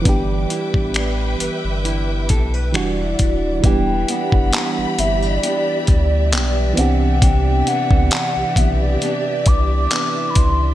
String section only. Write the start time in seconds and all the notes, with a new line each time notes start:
Already playing: D6
0.06 B4 E5 G5
2.74 G3 E5 F#5
3.64 G4 D5 E5 B5
6.78 G4